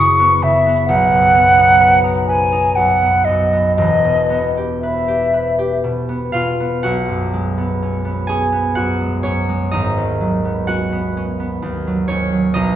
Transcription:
Already playing: harp F#1 F#2 C#3 B3 E4 G#4, flute C#6
0.19 harp B3
0.42 harp C#3, flute E5
0.66 harp B3
0.88 harp B1, flute F#5
1.12 harp F#2
1.34 harp B3
1.58 harp D#4
1.80 harp B4
2.04 harp D#4
2.27 harp B4, flute G#5
2.52 harp D#4
2.76 harp F#2, flute F#5
3.02 harp B3
3.25 harp F#2, flute D#5
3.53 harp B3
3.76 harp E1 E2, flute D#5
4.04 harp B2
4.30 harp B3
4.57 harp G4
4.80 harp B4, flute E5
5.08 harp G4
5.33 harp B4
5.59 harp G4
5.84 harp B2
6.09 harp B3
6.32 harp B2 F4 F5
6.60 harp B3
6.83 harp B1 F#4 F#5
7.09 harp F#2
7.33 harp G#3
7.58 harp B3
7.82 harp C#4
8.05 harp B3
8.27 harp C#4 G#4 G#5
8.52 harp B3
8.75 harp F#2 F#4 F#5
9.01 harp G#3
9.23 harp F#2 C#4 C#5
9.49 harp G#3
9.71 harp G#1 D#4 D#5
9.98 harp D#2
10.20 harp F#3
10.45 harp B3
10.67 harp C#4 F#4 F#5
10.92 harp B3
11.17 harp C#4
11.40 harp B3
11.62 harp D#2
11.87 harp F#3
12.08 harp D#2 C#4 C#5
12.32 harp F#3
12.54 harp B1 D#4 D#5

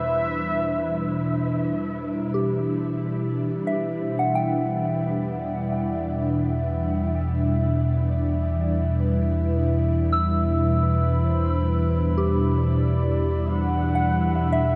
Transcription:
Already playing: sub bass E2, ambient pad B2 E3 G3 D4, synth drone E3 E4, soft synth lead E5
2.34 synth bell G4
3.55 sub bass E2, synth drone E3 E4, glass harmonica E4 E5, soft synth lead B4
3.67 synth bell E5
4.01 soft synth lead C5
4.19 synth bell F#5
4.35 synth bell G5
4.47 soft synth lead B4
5.39 soft synth lead D5
6.30 soft synth lead E5
7.20 soft synth lead E5
8.09 soft synth lead D5
9.00 soft synth lead B4
10.13 synth bell E6
10.82 soft synth lead B4, glass harmonica B5
11.24 soft synth lead C5
11.68 soft synth lead B4
12.18 synth bell G4
12.57 soft synth lead D5
13.45 soft synth lead F#5
13.95 synth bell F#5
14.35 soft synth lead E5
14.52 synth bell E5

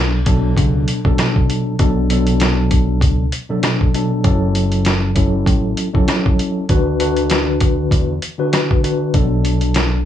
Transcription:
Already playing: fingered electric bass B1, tine electric piano B2 F#3 D4 A4
0.26 tine electric piano B2 F#3 D4 A4, kick, closed hi-hat
0.57 fingered electric bass C#2, kick, closed hi-hat
0.88 closed hi-hat
1.04 tine electric piano B2 F#3 D4 A4, kick
1.18 cross-stick, snare, closed hi-hat
1.36 kick
1.50 closed hi-hat
1.79 fingered electric bass B1, tine electric piano B2 F#3 D4 A4, kick, closed hi-hat
2.10 tine electric piano B2 F#3 D4 A4, closed hi-hat
2.27 closed hi-hat
2.40 cross-stick, snare, closed hi-hat
2.71 kick, closed hi-hat
3.01 fingered electric bass C#2, kick, closed hi-hat
3.32 closed hi-hat
3.49 tine electric piano B2 F#3 D4 A4
3.63 cross-stick, snare, closed hi-hat
3.81 kick
3.94 tine electric piano B2 F#3 D4 A4, closed hi-hat
4.23 fingered electric bass F#1, tine electric piano F#3 C#4 E4 A4, kick, closed hi-hat
4.55 closed hi-hat
4.72 closed hi-hat
4.85 cross-stick, snare, closed hi-hat
5.15 tine electric piano F#3 C#4 E4 A4, kick, closed hi-hat
5.46 fingered electric bass A1, kick, closed hi-hat
5.77 closed hi-hat
5.93 tine electric piano F#3 C#4 E4 A4, kick
6.08 cross-stick, snare, closed hi-hat
6.26 kick
6.39 closed hi-hat
6.69 fingered electric bass D2, tine electric piano D3 D4 F#4 B4, kick, closed hi-hat
6.99 tine electric piano D3 D4 F#4 B4, closed hi-hat
7.17 closed hi-hat
7.30 cross-stick, snare, closed hi-hat
7.60 kick, closed hi-hat
7.91 fingered electric bass E2, kick, closed hi-hat
8.22 closed hi-hat
8.38 tine electric piano D3 D4 F#4 B4
8.53 cross-stick, snare, closed hi-hat
8.71 kick
8.83 tine electric piano D3 D4 F#4 B4, closed hi-hat
9.13 fingered electric bass B1, tine electric piano B2 F#3 D4 A4, kick, closed hi-hat
9.45 closed hi-hat
9.61 closed hi-hat
9.74 cross-stick, snare, closed hi-hat

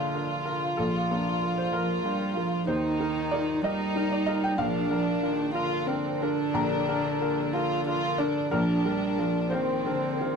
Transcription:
Already playing: felt piano A#1 D4 F4 A#4 D#5 F5, cello D3, harp A#3 D6, violin section F4
0.13 felt piano D4 A#4, harp D5
0.45 felt piano F4 A#4
0.77 felt piano A#1 A4, cello F3
0.94 harp D5
1.11 felt piano A#3 D4
1.42 felt piano F4 A#4, harp F5
1.58 felt piano C5
1.73 cello F3, felt piano F4 A#4, harp A#4
1.89 harp D5
2.04 cello G3, felt piano D4 A#4, harp D5
2.20 harp A#4
2.35 cello F3, felt piano F4 A#4, harp A#5
2.67 felt piano D#2 C5, cello D#3, harp D#4, violin section D#4
2.84 harp A#4
3.00 felt piano D#4 A#4
3.16 harp D#4
3.31 felt piano F4 A#4 D5
3.62 cello G3, violin section D#4, harp D#4, felt piano F4 A#4 D#5
3.79 harp A#4
3.95 felt piano D#4 A#4, harp A#4
4.11 harp D#4, felt piano D5
4.26 felt piano F4 A#4 D#5, harp F5
4.44 felt piano G5
4.57 felt piano A#1 F5, cello F3, violin section D4, harp A#4
4.75 harp D5
4.90 cello F3, felt piano D4 A#4
5.07 harp A#4
5.22 cello D#3, felt piano F4 A#4, harp F5
5.54 cello D3, violin section F4, felt piano F4 A#4, harp A#4
5.72 harp D5
5.88 violin section C4, felt piano D4 A#4, harp D5
6.05 harp A#4
6.21 violin section D4, felt piano F4 A#4, harp A#5
6.54 felt piano A#1 A#5, harp A#4
6.72 harp D5
6.88 felt piano D4 A#4
7.05 harp A#4
7.21 felt piano F4 A#4, harp F5
7.53 felt piano F4 A#4, violin section F4, harp A#4
7.70 harp D6
7.86 felt piano D4 A#4, violin section F4
8.03 harp A#4
8.18 violin section D4, felt piano F4 A#4 D5, harp A#5
8.51 felt piano A#1 A#4, cello F3, violin section D4, harp A#4
8.85 cello G3, felt piano D4 A#4
9.02 harp A#4
9.18 cello F3, felt piano F4 A#4, harp F5
9.50 cello D#3, violin section C4, felt piano F4 A#4 C5, harp A#4
9.85 cello D3, felt piano D4 A#4
10.02 harp A#4
10.19 cello D#3, felt piano F4 A#4, harp A#5

